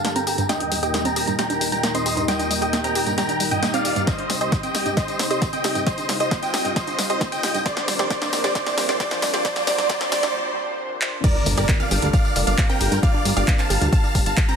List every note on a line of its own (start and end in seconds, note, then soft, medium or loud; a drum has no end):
0.00 0.46 G2 medium
0.00 0.46 D3 medium
0.00 0.46 A#3 medium
0.00 0.48 G4 medium
0.00 0.46 A4 medium
0.00 0.12 F5 medium
0.00 0.12 A5 medium
0.05 0.10 A#3 medium
0.05 snare medium
0.05 closed hi-hat medium
0.05 tambourine soft
0.16 0.21 C4 medium
0.16 0.43 G5 medium
0.16 0.43 A#5 medium
0.16 0.43 A#5 loud
0.16 closed hi-hat medium
0.16 tambourine soft
0.27 0.33 G4 loud
0.27 open hi-hat medium
0.27 tambourine medium
0.38 0.44 G2 loud
0.38 closed hi-hat medium
0.38 tambourine soft
0.49 4.04 D#2 medium
0.49 4.04 A#2 medium
0.49 0.55 G3 medium
0.49 7.62 G3 medium
0.49 7.62 D#4 medium
0.49 4.04 A#4 medium
0.49 0.76 D#5 medium
0.49 0.76 G5 loud
0.49 0.77 G5 loud
0.49 snare medium
0.49 closed hi-hat medium
0.49 tambourine soft
0.60 0.66 D4 medium
0.60 closed hi-hat medium
0.72 0.75 G3 medium
0.72 open hi-hat loud
0.72 tambourine medium
0.83 0.91 G4 loud
0.83 1.01 D#5 medium
0.83 1.01 G5 medium
0.83 closed hi-hat soft
0.83 tambourine soft
0.94 1.00 A#3 medium
0.94 snare medium
0.94 closed hi-hat medium
0.94 tambourine soft
1.05 1.11 C4 medium
1.05 1.32 G5 medium
1.05 1.32 A#5 loud
1.05 1.33 A#5 medium
1.05 closed hi-hat medium
1.05 tambourine soft
1.16 1.22 G4 loud
1.16 open hi-hat loud
1.16 tambourine medium
1.27 1.33 G2 loud
1.27 closed hi-hat soft
1.27 tambourine soft
1.39 1.44 G3 medium
1.39 1.66 G5 medium
1.39 1.66 A#5 medium
1.39 1.66 A#5 loud
1.39 snare medium
1.39 closed hi-hat medium
1.39 tambourine soft
1.50 1.56 D4 medium
1.50 closed hi-hat soft
1.50 tambourine soft
1.61 1.64 G3 medium
1.61 open hi-hat loud
1.61 tambourine medium
1.72 1.81 G2 medium
1.72 1.90 G5 medium
1.72 1.90 A#5 medium
1.72 1.91 A#5 medium
1.72 closed hi-hat medium
1.72 tambourine soft
1.83 1.89 A#3 medium
1.83 snare medium
1.83 closed hi-hat medium
1.83 tambourine soft
1.94 2.00 C4 medium
1.94 2.22 D#5 medium
1.94 2.22 C6 medium
1.94 closed hi-hat medium
1.94 tambourine soft
2.06 2.11 G4 loud
2.06 open hi-hat medium
2.06 tambourine medium
2.17 2.23 G2 loud
2.17 closed hi-hat soft
2.17 tambourine soft
2.28 2.34 G3 medium
2.28 2.56 D#5 medium
2.28 2.56 G5 loud
2.28 snare medium
2.28 closed hi-hat medium
2.28 tambourine soft
2.39 2.45 D4 medium
2.39 closed hi-hat medium
2.39 tambourine soft
2.51 2.54 G3 medium
2.51 open hi-hat loud
2.51 tambourine medium
2.62 2.70 G4 loud
2.62 2.80 D#5 medium
2.62 2.80 G5 medium
2.62 closed hi-hat soft
2.62 tambourine soft
2.73 2.79 A#3 medium
2.73 snare medium
2.73 closed hi-hat medium
2.73 tambourine soft
2.84 2.90 C4 medium
2.84 3.11 G5 medium
2.84 3.11 A#5 medium
2.84 3.12 A#5 loud
2.84 closed hi-hat soft
2.84 tambourine soft
2.95 3.01 G4 loud
2.95 open hi-hat medium
2.95 tambourine medium
3.07 3.12 G2 loud
3.07 closed hi-hat soft
3.07 tambourine soft
3.18 3.23 G3 medium
3.18 3.45 G5 medium
3.18 3.45 A#5 medium
3.18 snare medium
3.18 closed hi-hat medium
3.18 tambourine soft
3.29 3.35 D4 medium
3.29 closed hi-hat soft
3.29 tambourine soft
3.40 3.44 G3 medium
3.40 open hi-hat loud
3.40 tambourine medium
3.51 3.60 G2 medium
3.51 3.70 D#5 medium
3.51 3.70 G5 medium
3.51 closed hi-hat soft
3.51 tambourine soft
3.63 3.68 A#3 medium
3.63 snare medium
3.63 closed hi-hat medium
3.63 tambourine soft
3.74 3.79 C4 medium
3.74 4.01 D5 medium
3.74 4.01 F5 medium
3.74 closed hi-hat medium
3.74 tambourine soft
3.85 3.91 G4 loud
3.85 open hi-hat medium
3.85 tambourine medium
3.96 4.02 G2 loud
3.96 closed hi-hat soft
3.96 tambourine soft
4.07 7.62 C2 medium
4.07 7.62 C3 medium
4.07 5.85 G4 medium
4.07 4.35 C5 medium
4.07 4.35 D#5 medium
4.07 kick loud
4.07 snare medium
4.07 closed hi-hat medium
4.07 tambourine soft
4.07 riser medium
4.18 4.24 D4 medium
4.18 closed hi-hat medium
4.30 4.33 G3 medium
4.30 snare medium
4.30 open hi-hat loud
4.30 tambourine medium
4.41 4.49 G4 loud
4.41 4.59 C5 medium
4.41 4.59 D#5 medium
4.41 closed hi-hat soft
4.41 tambourine soft
4.52 4.58 A#3 medium
4.52 kick loud
4.52 snare medium
4.52 closed hi-hat medium
4.52 tambourine soft
4.63 4.69 C4 medium
4.63 4.91 D#5 medium
4.63 4.91 G5 medium
4.63 closed hi-hat soft
4.63 tambourine soft
4.75 4.80 G4 medium
4.75 snare medium
4.75 open hi-hat medium
4.75 tambourine medium
4.86 4.91 G2 medium
4.86 closed hi-hat soft
4.86 tambourine soft
4.97 5.03 G3 medium
4.97 5.24 C5 medium
4.97 5.24 D#5 medium
4.97 kick loud
4.97 snare medium
4.97 closed hi-hat medium
4.97 tambourine soft
5.08 5.14 D4 medium
5.08 closed hi-hat medium
5.08 tambourine soft
5.19 5.23 G3 medium
5.19 snare medium
5.19 open hi-hat loud
5.19 tambourine medium
5.30 5.39 G4 loud
5.30 5.49 C5 medium
5.30 5.49 D#5 medium
5.30 closed hi-hat medium
5.30 tambourine soft
5.42 5.47 A#3 medium
5.42 kick loud
5.42 snare medium
5.42 closed hi-hat medium
5.42 tambourine soft
5.53 5.59 C4 medium
5.53 5.80 D#5 medium
5.53 5.80 G5 medium
5.53 closed hi-hat medium
5.53 tambourine soft
5.64 5.70 G4 medium
5.64 snare medium
5.64 open hi-hat medium
5.64 tambourine medium
5.75 5.81 G2 loud
5.75 closed hi-hat soft
5.75 tambourine soft
5.86 5.92 G3 medium
5.86 7.64 F4 medium
5.86 6.14 C5 medium
5.86 6.14 D#5 medium
5.86 6.14 D#5 loud
5.86 kick loud
5.86 snare medium
5.86 closed hi-hat medium
5.86 tambourine soft
5.98 6.03 D4 medium
5.98 closed hi-hat medium
5.98 tambourine soft
6.09 6.12 G3 medium
6.09 snare medium
6.09 open hi-hat loud
6.09 tambourine medium
6.20 6.29 G4 loud
6.20 6.38 C5 medium
6.20 6.38 D#5 medium
6.20 6.39 D#5 medium
6.20 closed hi-hat soft
6.20 tambourine soft
6.31 6.37 A#3 medium
6.31 kick loud
6.31 snare medium
6.31 closed hi-hat medium
6.31 tambourine soft
6.42 6.48 C4 medium
6.42 6.70 D#5 medium
6.42 6.70 G5 medium
6.42 closed hi-hat medium
6.42 tambourine soft
6.54 6.59 G4 loud
6.54 snare medium
6.54 open hi-hat medium
6.54 tambourine medium
6.65 6.71 G2 medium
6.65 closed hi-hat medium
6.65 tambourine soft
6.76 6.82 G3 medium
6.76 7.03 C5 medium
6.76 7.03 D#5 medium
6.76 7.03 D#5 loud
6.76 kick loud
6.76 snare medium
6.76 closed hi-hat medium
6.76 tambourine soft
6.87 6.93 D4 medium
6.87 closed hi-hat medium
6.87 tambourine soft
6.99 7.02 G3 medium
6.99 snare medium
6.99 open hi-hat loud
6.99 tambourine medium
7.10 7.18 G4 loud
7.10 7.28 C5 medium
7.10 7.28 D#5 medium
7.10 closed hi-hat medium
7.10 tambourine soft
7.21 7.27 A#3 medium
7.21 kick loud
7.21 snare medium
7.21 closed hi-hat medium
7.21 tambourine soft
7.32 7.38 C4 medium
7.32 7.59 D#5 medium
7.32 7.59 G5 loud
7.32 7.59 G5 medium
7.32 closed hi-hat medium
7.32 tambourine soft
7.43 7.49 G4 loud
7.43 snare medium
7.43 open hi-hat medium
7.43 tambourine medium
7.54 7.60 G2 loud
7.54 closed hi-hat soft
7.54 tambourine soft
7.66 11.20 A#2 medium
7.66 11.20 F3 medium
7.66 7.71 G3 medium
7.66 11.20 C4 medium
7.66 11.20 D4 medium
7.66 9.43 A#4 medium
7.66 7.93 C5 medium
7.66 7.93 D5 loud
7.66 7.93 D5 medium
7.66 kick loud
7.66 snare medium
7.66 closed hi-hat medium
7.66 tambourine soft
7.77 7.82 D4 medium
7.77 snare medium
7.77 closed hi-hat medium
7.88 7.91 G3 medium
7.88 snare medium
7.88 open hi-hat loud
7.88 tambourine medium
7.99 8.08 G4 loud
7.99 8.09 C5 medium
7.99 8.09 D5 medium
7.99 snare medium
7.99 closed hi-hat medium
7.99 tambourine soft
8.10 8.16 G3 medium
8.10 8.38 C5 medium
8.10 8.38 D5 loud
8.10 8.38 D5 medium
8.10 kick loud
8.10 snare medium
8.10 closed hi-hat medium
8.10 tambourine soft
8.22 8.27 D4 medium
8.22 snare medium
8.22 closed hi-hat medium
8.22 tambourine soft
8.33 8.36 G3 medium
8.33 snare medium
8.33 open hi-hat medium
8.33 tambourine medium
8.44 8.52 G4 loud
8.44 8.53 C5 medium
8.44 8.53 D5 medium
8.44 snare medium
8.44 closed hi-hat soft
8.44 tambourine soft
8.55 8.82 C5 medium
8.55 8.82 D5 loud
8.55 8.83 D5 loud
8.55 kick loud
8.55 snare loud
8.55 closed hi-hat medium
8.55 tambourine soft
8.66 8.72 D4 medium
8.66 snare medium
8.66 closed hi-hat medium
8.66 tambourine soft
8.78 8.81 G3 medium
8.78 snare loud
8.78 open hi-hat loud
8.78 tambourine medium
8.89 8.97 G4 loud
8.89 8.98 C5 medium
8.89 8.98 D5 medium
8.89 snare medium
8.89 closed hi-hat medium
8.89 tambourine soft
9.00 9.06 G3 medium
9.00 9.27 C5 medium
9.00 9.27 D5 loud
9.00 kick loud
9.00 snare loud
9.00 closed hi-hat medium
9.00 tambourine soft
9.11 9.17 D4 medium
9.11 snare medium
9.11 closed hi-hat medium
9.11 tambourine soft
9.22 9.26 G3 medium
9.22 snare loud
9.22 open hi-hat medium
9.22 tambourine medium
9.34 9.42 G4 loud
9.34 9.43 C5 medium
9.34 9.43 D5 medium
9.34 snare medium
9.34 closed hi-hat medium
9.34 tambourine soft
9.45 9.50 G3 medium
9.45 11.22 C5 medium
9.45 9.65 C5 medium
9.45 9.65 D5 loud
9.45 kick loud
9.45 snare loud
9.45 closed hi-hat medium
9.45 tambourine soft
9.56 9.62 D4 medium
9.56 snare medium
9.56 closed hi-hat medium
9.56 tambourine soft
9.67 9.73 G3 medium
9.67 9.88 C5 medium
9.67 9.88 D5 loud
9.67 snare loud
9.67 open hi-hat loud
9.67 tambourine medium
9.78 9.84 D4 medium
9.78 snare medium
9.78 closed hi-hat medium
9.78 tambourine soft
9.89 10.10 C5 medium
9.89 10.10 D5 loud
9.89 kick loud
9.89 snare loud
9.89 closed hi-hat medium
9.89 tambourine soft
10.01 10.06 D4 medium
10.01 snare medium
10.01 closed hi-hat medium
10.01 tambourine soft
10.12 10.18 G3 medium
10.12 10.33 C5 medium
10.12 10.33 D5 loud
10.12 snare loud
10.12 open hi-hat medium
10.12 tambourine medium
10.23 10.29 D4 medium
10.23 snare medium
10.23 closed hi-hat medium
10.23 tambourine soft
11.02 clap medium
11.24 14.56 G3 medium
11.24 11.30 G3 medium
11.24 14.56 D4 medium
11.24 14.56 F4 medium
11.24 13.01 A4 medium
11.24 14.56 A#4 medium
11.24 11.51 A#4 medium
11.24 11.51 D5 loud
11.24 kick loud
11.24 closed hi-hat medium
11.24 crash loud
11.24 tambourine soft
11.24 impact medium
11.35 11.41 D4 medium
11.46 11.54 G1 medium
11.46 11.50 G3 medium
11.46 open hi-hat loud
11.46 tambourine medium
11.57 11.65 G1 medium
11.57 11.66 G4 loud
11.57 11.76 A#4 medium
11.57 11.76 D5 medium
11.57 closed hi-hat medium
11.57 tambourine soft
11.69 11.74 A#3 medium
11.69 kick loud
11.69 clap loud
11.69 closed hi-hat medium
11.69 tambourine soft
11.80 11.85 C4 medium
11.80 12.07 D5 medium
11.80 12.07 F5 medium
11.80 tambourine soft
11.91 11.99 G1 medium
11.91 11.97 G4 loud
11.91 open hi-hat loud
11.91 tambourine medium
12.02 12.10 D2 medium
12.02 12.08 G2 loud
12.02 closed hi-hat medium
12.02 tambourine soft
12.13 12.19 G3 medium
12.13 12.41 D5 medium
12.13 12.41 F5 medium
12.13 12.41 F5 loud
12.13 kick loud
12.13 closed hi-hat medium
12.13 tambourine soft
12.25 12.30 D4 medium
12.25 tambourine soft
12.36 12.43 F1 medium
12.36 12.39 G3 medium
12.36 open hi-hat loud
12.36 tambourine medium
12.47 12.55 G1 medium
12.47 12.55 G2 medium
12.47 12.65 D5 medium
12.47 12.65 F5 medium
12.47 closed hi-hat medium
12.47 tambourine soft
12.58 12.64 A#3 medium
12.58 kick loud
12.58 clap loud
12.58 closed hi-hat medium
12.69 12.75 C4 medium
12.69 12.97 A#4 medium
12.69 12.97 G5 medium
12.69 12.97 G5 loud
12.69 tambourine soft
12.81 12.88 G1 medium
12.81 12.86 G4 loud
12.81 open hi-hat loud
12.81 tambourine medium
12.92 12.99 G1 medium
12.92 12.97 G2 loud
12.92 closed hi-hat medium
12.92 tambourine soft
13.03 13.09 G3 medium
13.03 14.56 G4 medium
13.03 13.30 D5 medium
13.03 13.30 F5 loud
13.03 kick loud
13.03 closed hi-hat medium
13.03 tambourine soft
13.14 13.20 D4 medium
13.25 13.33 G1 loud
13.25 13.29 G3 medium
13.25 open hi-hat loud
13.25 tambourine medium
13.36 13.44 G1 medium
13.36 13.45 G4 loud
13.36 13.55 D5 medium
13.36 13.55 F5 medium
13.36 closed hi-hat medium
13.36 tambourine soft
13.48 13.53 A#3 medium
13.48 kick loud
13.48 clap loud
13.48 closed hi-hat medium
13.48 tambourine soft
13.59 13.65 C4 medium
13.59 13.86 F5 medium
13.59 13.86 A5 loud
13.59 13.86 A5 medium
13.59 clap soft
13.59 tambourine soft
13.70 13.78 G1 medium
13.70 13.76 G4 loud
13.70 open hi-hat loud
13.70 tambourine medium
13.81 13.89 D2 medium
13.81 13.87 G2 loud
13.81 closed hi-hat medium
13.81 tambourine soft
13.93 13.98 G3 medium
13.93 14.20 F5 medium
13.93 14.20 A5 medium
13.93 14.20 A5 loud
13.93 kick loud
13.93 closed hi-hat medium
13.93 tambourine soft
14.04 14.09 D4 medium
14.04 tambourine soft
14.15 14.22 F1 loud
14.15 14.18 G3 medium
14.15 kick medium
14.15 open hi-hat loud
14.15 tambourine medium
14.26 14.34 G1 medium
14.26 14.34 G2 medium
14.26 14.44 F5 medium
14.26 14.44 A5 medium
14.26 closed hi-hat medium
14.26 tambourine soft
14.37 14.43 A#3 medium
14.37 kick loud
14.37 clap loud
14.37 closed hi-hat medium
14.49 14.54 C4 medium
14.49 14.56 G5 medium
14.49 14.56 A#5 medium
14.49 14.56 A#5 loud
14.49 tambourine soft